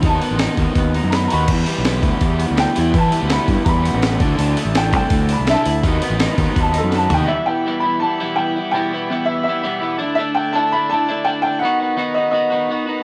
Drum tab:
CC |--------|x-------|--------|--------|
HH |oooooooo|-ooooooo|oooooooo|oooooooo|
SD |--o---o-|--o---o-|--o---o-|--o---o-|
FT |--------|--------|--------|--------|
BD |o--oo---|o--oo---|o--oo--o|---oo---|

CC |--------|--------|--------|--------|
HH |oooooooo|--------|--------|--------|
SD |--o---o-|--------|--------|--------|
FT |-------o|--------|--------|--------|
BD |o--oo---|--------|--------|--------|

CC |--------|
HH |--------|
SD |--------|
FT |--------|
BD |--------|